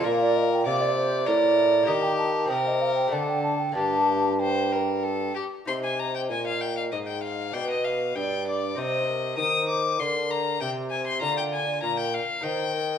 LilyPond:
<<
  \new Staff \with { instrumentName = "Violin" } { \time 3/4 \key g \minor \tempo 4 = 98 bes'4 d''4 bes'4 | g'4 bes'4 a'4 | g'4 c''8 bes'8 a'8 g'8 | \key c \minor c'''16 aes''16 bes''16 g''16 aes''16 f''16 g''16 f''16 ees''16 g''16 f''8 |
g''16 ees''16 f''8 g''8 d''8 ees''4 | ees'''8 d'''8 c'''8 bes''8 g''8 aes''16 c'''16 | bes''16 g''16 aes''8 bes''16 g''16 f''8 g''4 | }
  \new Staff \with { instrumentName = "Flute" } { \time 3/4 \key g \minor f''16 d''16 ees''16 g''16 f''16 d''16 c''8 d''4 | bes''16 g''16 a''8 g''16 ees''16 f''16 g''16 fis''16 g''16 a''16 g''16 | a''4 g''4. r8 | \key c \minor ees''2. |
b'4 d''4 c''8 bes'8 | c''4 bes'4 c''4 | d''4 bes'8 r8 c''8 bes'8 | }
  \new Staff \with { instrumentName = "Lute" } { \time 3/4 \key g \minor <bes f' d''>2. | <bes g' ees''>4 <c' g' ees''>4 <a d' d''>4 | <bes d' d''>2. | \key c \minor <ees' c''>2. |
<d' d''>2 <ees' c''>4 | <ees' bes'>2. | <f' bes'>2 <ees' bes'>4 | }
  \new Staff \with { instrumentName = "Lute" } { \clef bass \time 3/4 \key g \minor bes,4 c4 a,4 | ees4 c4 d4 | g,2~ g,8 r8 | \key c \minor c4 bes,4 aes,4 |
b,4 g,4 c4 | ees4 d4 c4 | d4 bes,8 r8 ees4 | }
  \new Staff \with { instrumentName = "Bassoon" } { \clef bass \time 3/4 \key g \minor bes,4 c4 a,4 | ees4 c4 d4 | g,2~ g,8 r8 | \key c \minor c4 bes,4 aes,4 |
b,4 g,4 c4 | ees4 d4 c4 | d4 bes,8 r8 ees4 | }
>>